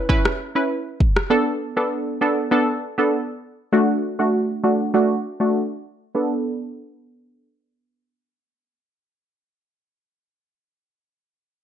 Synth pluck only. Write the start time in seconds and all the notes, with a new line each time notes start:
0.09 C#4 E4 B4
0.55 C#4 E4 B4
1.30 B3 D4 A4
1.77 B3 D4 A4
2.21 B3 D4 A4
2.51 B3 D4 A4
2.98 B3 D4 A4
3.72 A3 D4 F#4
4.19 A3 D4 F#4
4.64 A3 D4 F#4
4.94 A3 D4 F#4
5.40 A3 D4 F#4
6.15 B3 D4 A4